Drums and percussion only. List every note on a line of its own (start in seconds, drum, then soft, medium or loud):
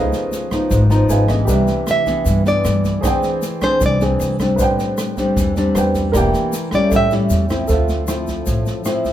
0.13 snare soft
0.13 shaker soft
0.32 snare soft
0.32 shaker medium
0.51 kick soft
0.51 cross-stick medium
0.51 snare soft
0.51 shaker soft
0.70 kick medium
0.70 snare soft
0.70 shaker medium
0.90 snare soft
0.90 shaker soft
1.09 snare soft
1.09 shaker medium
1.28 kick soft
1.28 cross-stick medium
1.28 snare soft
1.28 shaker soft
1.48 kick medium
1.48 snare soft
1.48 shaker medium
1.67 snare soft
1.67 shaker soft
1.87 cross-stick medium
1.87 snare soft
1.87 shaker medium
2.06 kick soft
2.06 snare soft
2.06 shaker soft
2.26 kick medium
2.26 snare soft
2.26 shaker medium
2.45 snare soft
2.45 shaker soft
2.65 cross-stick medium
2.65 snare soft
2.65 shaker medium
2.84 kick soft
2.84 snare soft
2.84 shaker soft
3.03 kick medium
3.03 cross-stick medium
3.03 snare soft
3.03 shaker medium
3.23 snare soft
3.23 shaker soft
3.42 snare soft
3.42 shaker medium
3.62 kick soft
3.62 cross-stick medium
3.62 snare soft
3.62 shaker soft
3.81 kick medium
3.81 snare soft
3.81 shaker medium
4.01 snare soft
4.01 shaker soft
4.20 snare soft
4.20 shaker medium
4.39 kick soft
4.39 cross-stick medium
4.39 snare soft
4.39 shaker soft
4.59 kick medium
4.59 snare soft
4.59 shaker medium
4.79 snare soft
4.79 shaker soft
4.98 cross-stick medium
4.98 snare soft
4.98 shaker medium
5.17 kick soft
5.17 snare soft
5.17 shaker soft
5.36 kick medium
5.36 snare soft
5.36 shaker medium
5.56 snare soft
5.56 shaker soft
5.75 cross-stick medium
5.75 snare soft
5.75 shaker medium
5.94 kick soft
5.94 snare soft
5.94 shaker soft
6.13 kick medium
6.13 cross-stick medium
6.13 snare soft
6.13 shaker medium
6.33 snare soft
6.33 shaker soft
6.53 snare soft
6.53 shaker medium
6.71 kick soft
6.71 cross-stick medium
6.71 snare soft
6.71 shaker soft
6.91 kick medium
6.91 snare soft
6.91 shaker medium
7.11 snare soft
7.11 shaker soft
7.30 snare soft
7.30 shaker medium
7.49 kick soft
7.49 cross-stick medium
7.49 snare soft
7.49 shaker soft
7.68 kick medium
7.68 snare soft
7.68 shaker medium
7.88 snare soft
7.88 shaker soft
8.07 cross-stick medium
8.07 snare soft
8.07 shaker medium
8.27 kick soft
8.27 snare soft
8.27 shaker soft
8.46 kick medium
8.46 snare soft
8.46 shaker medium
8.66 snare soft
8.66 shaker soft
8.85 cross-stick medium
8.85 snare soft
8.85 shaker medium
9.05 kick soft
9.05 snare soft
9.05 shaker soft